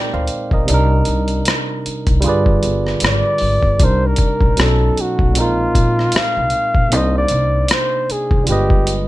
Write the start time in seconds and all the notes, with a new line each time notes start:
Already playing: A#2 G#3 C4 D#4 A#4 D5 G5
0.14 D2 C5 F5
0.28 closed hi-hat
0.51 A#1 A#4 D#5, kick
0.65 C2 C3 G3, closed hi-hat
0.70 D4 D#4
0.74 A#4
1.05 C2, closed hi-hat
1.28 closed hi-hat
1.45 cross-stick, closed hi-hat
1.86 muted upright bass stroke, closed hi-hat
2.07 C2, kick, closed hi-hat
2.20 G2 D3 G3 F4, closed hi-hat
2.26 G#4 B4 D5
2.46 kick
2.63 G1, closed hi-hat
2.87 cross-stick
3.00 G#1, closed hi-hat
3.04 D5, cross-stick
3.38 G#1, open hi-hat
3.63 G1, kick
3.79 C2 C3 G3 D4 D#4, kick, closed hi-hat
3.83 A#4 C5
4.07 A#4
4.16 kick, closed hi-hat
4.41 A#1, kick
4.57 B1 B2 F#3 C#4 D4, cross-stick, closed hi-hat
4.61 A4
4.66 D#4
4.98 F#4, closed hi-hat
5.19 B1, kick
5.32 A#2 G#3, closed hi-hat
5.36 A#1 C4 D#4
5.40 F4 A#4
5.75 A#1, kick, closed hi-hat
5.99 cross-stick
6.12 muted upright bass stroke, closed hi-hat
6.16 F5, cross-stick
6.37 C2
6.50 closed hi-hat
6.75 A#1, kick
6.88 C3 A#3
6.92 C2 D4 D#4 D#5, closed hi-hat
6.97 C5
7.18 D5
7.28 C2, closed hi-hat
7.68 C5, cross-stick, closed hi-hat
8.10 G#4, muted upright bass stroke, closed hi-hat
8.31 C2, kick
8.43 D3 G3 F4, closed hi-hat
8.49 G1 G#3 G4 B4 D#5
8.70 kick
8.87 closed hi-hat